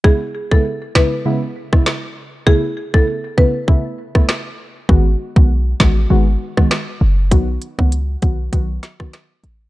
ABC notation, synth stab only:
X:1
M:4/4
L:1/16
Q:"Swing 16ths" 1/4=99
K:C#m
V:1 name="Synth stab"
[C,G,B,E] z2 [C,G,B,E] z2 [C,G,B,E] z [C,G,B,E] z2 [C,G,B,E] z4 | [C,A,B,E] z2 [C,A,B,E] z2 [C,A,B,E] z [C,A,B,E] z2 [C,A,B,E] z4 | [D,G,B,F] z2 [D,G,B,F] z2 [D,G,B,F] z [D,G,B,F] z2 [D,G,B,F] z4 | [D,F,B,F] z2 [D,F,B,F] z2 [D,F,B,F] z [D,F,B,F] z2 [D,F,B,F] z4 |]